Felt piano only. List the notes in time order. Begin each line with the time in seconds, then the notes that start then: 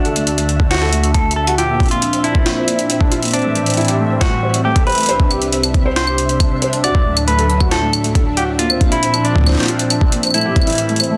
0.05 A4
0.16 A3
0.27 D4
0.38 A3
0.60 D4
0.71 F#4
0.82 A4
0.93 A3
1.04 D4
1.15 A3
1.36 D4
1.47 F#4
1.58 F4
1.69 A#3
1.80 C4
1.91 A#3
2.13 C4
2.24 D4
2.35 F4
2.46 A#3
2.57 C4
2.68 A#3
2.90 C4
3.01 D4
3.12 F4
3.23 A#3
3.34 C4
3.44 A3
3.66 C4
3.77 E4
3.88 G4
3.99 A3
4.10 C4
4.21 A3
4.43 C5
4.54 C4
4.65 A3
4.76 A4
4.87 C5
4.98 A3
5.09 C5
5.20 D4
5.31 G4
5.53 C4
5.64 D4
5.75 C4
5.85 C5
5.96 D4
6.07 G4
6.29 C4
6.40 D4
6.51 C4
6.62 C5
6.73 D4
6.84 F#4
7.06 A3
7.17 D4
7.28 A3
7.39 A4
7.50 D4
7.61 F#4
7.82 A3
7.93 D4
8.04 A3
8.15 A4
8.26 D4
8.37 F#4
8.59 A#3
8.70 C4
8.81 A#3
8.92 F4
9.03 C4
9.14 D4
9.36 A#3
9.47 C4
9.58 A#3
9.69 F4
9.79 C4
9.90 D4
10.12 A#3
10.23 C4
10.34 A3
10.45 G4
10.56 C4
10.67 E4
10.89 A3
11.00 C4
11.11 A3